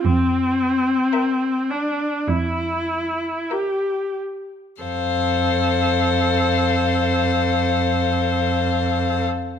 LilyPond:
<<
  \new Staff \with { instrumentName = "Violin" } { \time 4/4 \key f \major \tempo 4 = 50 r4 e''4 r4 e''4 | f''1 | }
  \new Staff \with { instrumentName = "Violin" } { \time 4/4 \key f \major r4 bes'4 r4 bes'4 | c''1 | }
  \new Staff \with { instrumentName = "Viola" } { \time 4/4 \key f \major c'4. d'8 e'4 g'8 r8 | a'1 | }
  \new Staff \with { instrumentName = "Cello" } { \clef bass \time 4/4 \key f \major f,4 r4 f,4 r4 | f,1 | }
>>